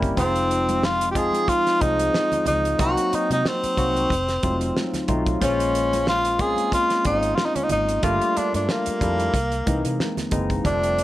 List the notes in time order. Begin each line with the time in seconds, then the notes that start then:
Already playing: F#1 C3 G3 A#3 C4 C#4 E4 G4 A#4
0.03 kick, closed hi-hat
0.16 F1 F3 G#3 C4 D#4 F4, kick, closed hi-hat, low conga
0.36 closed hi-hat
0.51 closed hi-hat
0.69 closed hi-hat, high conga
0.83 F4, snare
1.01 closed hi-hat, muted conga
1.11 G4
1.15 F3 G#3 C4 D#4 F4 G#4, kick, closed hi-hat
1.33 closed hi-hat, high conga
1.48 F4, kick, closed hi-hat, muted conga
1.66 snare, closed hi-hat, muted conga
1.80 C2 F3 G#3 C4 D#4 G#4, kick, closed hi-hat, high conga
1.99 closed hi-hat
2.14 snare, muted conga, high conga
2.32 closed hi-hat, muted conga, low conga
2.46 C#2 D#4, closed hi-hat, high conga, low conga
2.65 closed hi-hat
2.78 C2 F#3 A#3 C4 D#4 F#4, kick, closed hi-hat, muted conga, low conga
2.97 closed hi-hat
3.13 D#4, muted fingered electric bass stroke, closed hi-hat
3.30 C3 D#4, closed hi-hat, high conga
3.46 C4, snare, muted conga
3.63 muted fingered electric bass stroke, closed hi-hat, muted conga
3.77 C2 F#3 A#3 C4 D#4 F#4, kick, closed hi-hat
3.94 closed hi-hat, high conga
4.10 F1, kick, closed hi-hat
4.28 snare, closed hi-hat
4.43 F1 F#3 A3 C4 D#4 F4, kick, closed hi-hat, high conga
4.61 closed hi-hat
4.77 snare, muted conga, high conga
4.94 snare, closed hi-hat, muted conga, low conga
5.08 B1 F#3 A3 C4 D#4 F4, kick, closed hi-hat, high conga, low conga
5.26 kick, closed hi-hat
5.40 A#1 G#3 A#3 C#4 F4 C5, kick, closed hi-hat, low conga
5.59 closed hi-hat, muted conga
5.75 closed hi-hat
5.93 closed hi-hat, high conga
6.07 F4, snare, muted conga
6.25 closed hi-hat, muted conga
6.38 G#3 A#3 C4 C#4 F4 G#4, kick, closed hi-hat
6.56 closed hi-hat, high conga
6.72 F4, kick, closed hi-hat
6.90 snare, closed hi-hat, muted conga
7.04 G#1 G#3 A#3 C4 C#4 D#4 F4, kick, closed hi-hat, high conga
7.23 closed hi-hat
7.36 F4, snare, high conga
7.46 D#4
7.55 C#4, closed hi-hat, muted conga, low conga
7.63 D#4
7.69 G#1 D#4, closed hi-hat, high conga, low conga
7.89 closed hi-hat
8.03 G1 G3 A3 A#3 D4 F4, kick, closed hi-hat, low conga
8.21 closed hi-hat
8.37 D4, muted fingered electric bass stroke, closed hi-hat
8.54 G2 D4, closed hi-hat, high conga
8.69 A#3, snare, muted conga
8.86 muted fingered electric bass stroke, closed hi-hat
9.01 F2 G3 A#3 D4 E4 A4, kick, closed hi-hat
9.18 closed hi-hat, high conga
9.34 C2, kick, closed hi-hat
9.52 closed hi-hat, muted conga
9.66 C2 E3 G#3 A#3 C4 D#4, kick, closed hi-hat, high conga
9.85 C3, closed hi-hat
10.00 snare, high conga
10.17 snare, closed hi-hat, muted conga, low conga
10.31 F#1 E3 G#3 A#3 C4 D#4, kick, closed hi-hat, high conga, low conga
10.50 kick, closed hi-hat
10.64 F1 F3 G3 A3 C4 D4, kick, closed hi-hat, low conga
10.83 closed hi-hat
10.98 closed hi-hat